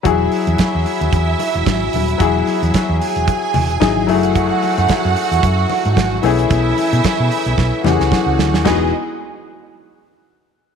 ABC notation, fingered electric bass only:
X:1
M:4/4
L:1/16
Q:"Swing 16ths" 1/4=112
K:E
V:1 name="Fingered electric bass" clef=bass
E,,,2 z E,, z E,, z D,, E,,2 z E,,, G,,,2 D,,,2 | E,,,2 z E,, z E,, z E,,, z2 E,,,2 G,,,2 F,,,2- | F,,,2 z F,, z F,, z E,, F,,2 z G,, G,,,2 B,,,2 | B,,,2 z B,, z B,, z B,,, B,,, z E,, C,, z C,, =D,, ^D,, |
E,,,2 z12 z2 |]